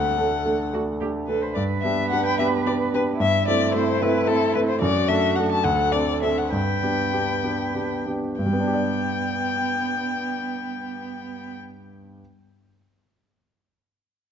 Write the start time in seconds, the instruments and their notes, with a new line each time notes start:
Already playing: grand piano D2, cello A4, violin F#5
0.17 grand piano A3 D4 A4
0.45 grand piano A3 D4 A4
0.73 grand piano A3 D4 A4, cello F#4
1.01 grand piano A3 D4 A4, cello G4
1.27 grand piano A3 D4 A4, cello A4, violin B4
1.42 cello B4, violin C5
1.55 grand piano G2, cello B4, violin D5
1.82 grand piano B3 D4 G4, violin E5
2.10 grand piano B3 D4 G4, violin F#5
2.26 violin G5
2.39 grand piano B3 D4 G4, violin E5
2.66 grand piano B3 D4 G4, violin D5
2.94 grand piano B3 D4 G4, violin B4
3.20 grand piano G2, cello E4, violin E5
3.48 grand piano A3 C4 E4, violin D5
3.74 grand piano A3 C4 E4, violin C5
4.01 grand piano A3 C4 E4, violin B4
4.27 grand piano A3 C4 E4, violin A4
4.54 grand piano A3 C4 E4, violin B4
4.69 violin C5
4.81 grand piano F#2, cello F#4, violin D5
5.08 grand piano A3 D4 A4, violin E5
5.36 grand piano A3 D4 A4, violin F#5
5.52 violin A5
5.64 grand piano D2, cello A4, violin F#5
5.92 grand piano C4 D4 A4, violin D5
6.22 grand piano C4 D4 A4, violin E5
6.38 violin F#5
6.51 grand piano G2, cello B4, violin G5
6.82 grand piano B3 D4 G4
7.13 grand piano B3 D4 G4
7.43 grand piano B3 D4 G4
7.75 grand piano B3 D4 G4
8.06 grand piano B3 D4 G4
8.39 grand piano G2, cello B3, violin G5
8.46 grand piano G3
8.53 grand piano B3
8.60 grand piano D4
8.67 grand piano G4
8.74 grand piano D5